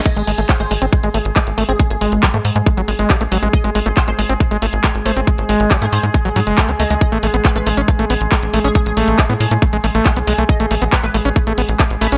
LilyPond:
<<
  \new Staff \with { instrumentName = "Synth arpeggio sound" } { \time 4/4 \tempo 4 = 138 dis''4 bis'16 bis'16 r2 r16 gis'16 | gis'16 gis'16 r2. r8 | dis''4 bis'16 bis'16 r2 bis'8 | r4 r16 gis'16 bis'8 r4. dis''16 dis''16 |
dis''4 b'16 b'16 r2 r16 gis'16 | gis'16 gis'16 r2. r8 | dis''4 b'16 b'16 r2 b'8 | }
  \new Staff \with { instrumentName = "Ambient pad" } { \time 4/4 <gis gis'>1~ | <gis gis'>1~ | <gis gis'>1~ | <gis gis'>1~ |
<gis gis'>1~ | <gis gis'>1~ | <gis gis'>1 | }
  \new Staff \with { instrumentName = "Acid bass" } { \time 4/4 r16 gis16 gis16 a16 r16 gis16 gis16 bis16 gis16 gis16 a16 r16 gis16 r16 a16 bis16 | gis16 r16 gis8 fis16 a16 r16 gis16 gis16 fis16 gis16 gis16 fis16 a16 fis16 gis16 | r16 gis16 gis16 a16 r16 gis16 gis16 bis16 gis16 gis16 a16 r16 gis16 r16 a16 bis16 | gis16 r16 gis8 fis16 a16 r16 gis16 gis16 fis16 fis16 gis16 a16 dis'16 a16 gis16 |
r16 a16 a16 b16 r16 a16 a16 cis'16 a16 a16 b16 r16 a16 r16 a16 cis'16 | a16 r16 a8 gis16 b16 r16 a16 a16 gis16 a16 a16 gis16 b16 gis16 a16 | r16 a16 a16 b16 r16 a16 a16 cis'16 a16 a16 b16 r16 a16 r16 a16 cis'16 | }
  \new Staff \with { instrumentName = "Analog synth bass" } { \clef bass \time 4/4 r16 gis,,16 gis,,16 gis,,16 r16 gis,,16 gis,,16 gis,,16 r16 gis,,16 gis,,16 gis,,16 r16 gis,,16 gis,,16 gis,,16 | r16 gis,,16 gis,,16 gis,,16 r16 gis,16 gis,16 gis,16 r16 gis,,16 gis,,16 gis,,16 r16 a,,16 a,,16 a,,16 | r16 gis,,16 gis,,16 gis,,16 r16 gis,,16 gis,,16 gis,,16 r16 gis,,16 gis,,16 gis,,16 r16 gis,,16 gis,,16 gis,,16 | r16 gis,,16 gis,,16 gis,,16 r16 gis,16 gis,16 gis,16 r16 a,,16 gis,16 fis,,16 r16 cis,16 cis,16 cis,16 |
r16 a,,16 a,,16 a,,16 r16 a,,16 a,,16 a,,16 r16 a,,16 a,,16 a,,16 r16 a,,16 a,,16 a,,16 | r16 a,,16 a,,16 a,,16 r16 a,16 a,16 a,16 r16 a,,16 a,,16 a,,16 r16 b,,16 b,,16 b,,16 | r16 a,,16 a,,16 a,,16 r16 a,,16 a,,16 a,,16 r16 a,,16 a,,16 a,,16 r16 a,,16 a,,16 a,,16 | }
  \new DrumStaff \with { instrumentName = "Drums" } \drummode { \time 4/4 <cymc hh bd>16 hh16 hho16 hh16 <hc hh bd>16 hh16 hho16 hh16 <hh bd>16 hh16 hho16 hh16 <hc hh bd>16 hh16 hho16 hh16 | <hh bd>16 hh16 hho16 hh16 <hc hh bd>16 hh16 hho16 hh16 <hh bd>16 hh16 hho16 hh16 <hc hh bd>16 hh16 hho16 hh16 | <hh bd>16 hh16 hho16 hh16 <hc hh bd>16 hh16 hho16 hh16 <hh bd>16 hh16 hho16 hh16 <hc hh bd>16 hh16 hho16 hh16 | <hh bd>16 hh16 hho16 hh16 <hc hh bd>16 hh16 hho16 hh16 <hh bd>16 hh16 hho16 hh16 <hc hh bd>16 hh16 hho16 hh16 |
<hh bd>16 hh16 hho16 hh16 <hc hh bd>16 hh16 hho16 hh16 <hh bd>16 hh16 hho16 hh16 <hc hh bd>16 hh16 hho16 hh16 | <hh bd>16 hh16 hho16 hh16 <hc hh bd>16 hh16 hho16 hh16 <hh bd>16 hh16 hho16 hh16 <hc hh bd>16 hh16 hho16 hh16 | <hh bd>16 hh16 hho16 hh16 <hc hh bd>16 hh16 hho16 hh16 <hh bd>16 hh16 hho16 hh16 <hc hh bd>16 hh16 hho16 hh16 | }
>>